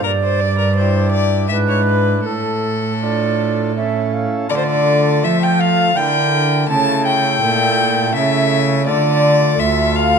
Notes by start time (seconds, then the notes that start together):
0.03 G2 A#4 D5
0.23 C5
0.41 D5
0.59 A#4
0.76 D4 E4 G4 C5
1.12 D5
1.49 G#2 D4 E4 B4 E5
1.68 C#5
1.86 B4
2.24 A2 A4
3.01 D4 F4 A4 D5
3.75 C#4 E4 A4 E5
4.14 F5
4.46 A3 F4 A4 D5
4.50 D3 D5
4.57 C5
4.64 D5
5.23 F3 E5
5.42 G5
5.60 F5
5.94 D3 E4 A#4 G5
6.65 A3 E4 A4
6.69 C#3 A5
7.06 G5
7.42 A#2
8.14 C#3 E5
8.83 A3 F4 A4
8.87 D3 D5
9.59 D2 E5
9.96 F5